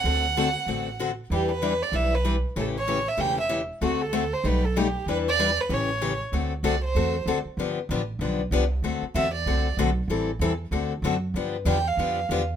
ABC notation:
X:1
M:4/4
L:1/8
Q:"Swing" 1/4=191
K:Dmix
V:1 name="Violin"
f6 z2 | G B2 d e B z2 | A ^c2 e g e z2 | F A2 c B A G2 |
B d2 B ^c3 z | z2 d c3 z2 | z8 | z2 e d3 z2 |
z8 | z2 g =f3 z2 |]
V:2 name="Steel-string acoustic guitar"
[D,A,CFA] z [D,A,CFA] z [D,A,CFA] z [D,A,CFA] z | [E,G,DEB] z [E,G,DEB] z [E,G,DEB] z [E,G,DEB] z | [^C,E,A,^CG] z [C,E,A,CG] z [C,E,A,CG] z [C,E,A,CG] z | [D,A,CFA] z [D,A,CFA] z [B,,G,A,^DG] z [B,,G,A,DG] z |
[E,G,DEB] z [E,G,DEB] z [^C,E,A,^CG] z [C,E,A,CG] z | [D,A,CFA] z [D,A,CFA] z [D,A,CFA] z [D,A,CFA] z | [D,=F,B,DG] z [D,F,B,DG] z [D,F,B,DG] z [D,F,B,DG] z | [D,A,CFA] z [D,A,CFA] z [D,A,CFA] z [D,A,CFA] z |
[E,G,CEA] z [E,G,CEA] z [D,A,CFA] z [D,A,CFA] z | [D,=F,B,DG] z [D,F,B,DG] z [D,F,B,DG] z [D,F,B,DG] z |]
V:3 name="Upright bass" clef=bass
D,,4 A,,,4 | E,,4 B,,,4 | A,,,4 E,,,4 | D,,4 B,,,4 |
E,,4 A,,,4 | D,,2 C,,2 E,,2 D,, z | G,,,2 A,,,2 B,,,2 C,,2 | D,, z E,,2 C,,2 B,,,2 |
A,,,2 E,,2 D,,2 F,,2 | G,,2 E,,2 =F,,2 E,,2 |]